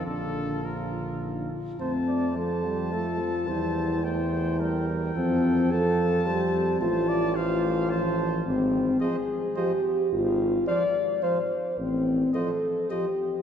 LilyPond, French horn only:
\new Staff \with { instrumentName = "French horn" } { \time 3/4 \key bes \major \tempo 4 = 108 d'4 f'8 d'8 ees'8 f'8 | \key f \major c'4 a'4 f'4 | e'4 e'4. r8 | c'4 a'4 g'4 |
f'4 f'4. r8 | \key f \dorian c'4 aes'4 g'4 | f'4 d''4 c''4 | c'4 a'4 g'4 | }